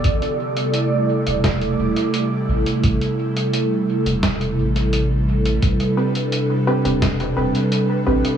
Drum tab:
HH |xx-xx--xxx-xx--x|xx-xx--xxx-xx--x|xx-xx--xxx-xx--x|
SD |--------o-------|--------o-------|--------o-------|
BD |o-------o-------|o-------o-------|o-------o-------|